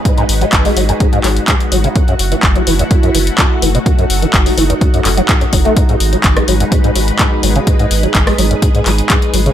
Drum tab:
HH |xxoxxooxxxoxxxox|xxoxxxoxxxoxx-ox|xxoxxooxxxoxxxox|xxoxxxoxxxoxx-ox|
CP |----x-----x-x---|----x-------x---|----x-----x-x---|----x-------x---|
SD |----------------|----------------|----------------|-----r----------|
BD |o---o---o---o---|o---o---o---o---|o---o---o---o-o-|o---o---o---o---|

HH |xxoxxooxxxoxxxox|
CP |----x-----x-x---|
SD |-----r----------|
BD |o---o---o---o---|